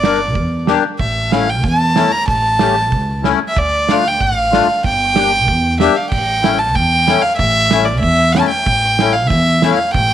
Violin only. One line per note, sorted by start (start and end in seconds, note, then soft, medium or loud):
0.00 0.64 D5 medium
1.00 1.33 E5 medium
1.32 1.51 F5 medium
1.50 1.65 G5 medium
1.64 2.13 A5 medium
2.12 2.27 A#5 medium
2.28 3.20 A5 loud
3.48 3.60 E5 medium
3.58 3.93 D5 medium
3.91 4.09 F5 medium
4.08 4.23 G5 medium
4.22 4.85 F5 medium
4.86 5.77 G5 loud
5.80 5.98 E5 medium
5.97 6.10 F5 medium
6.10 6.60 G5 medium
6.59 6.77 A5 medium
6.75 7.23 G5 medium
7.22 7.36 F5 medium
7.37 7.86 E5 loud
7.85 7.99 D5 medium
8.00 8.34 E5 loud
8.33 8.49 A5 medium
8.49 9.14 G5 medium
9.13 9.29 F5 medium
9.27 9.64 E5 loud
9.62 9.93 F5 medium
9.94 10.14 G5 loud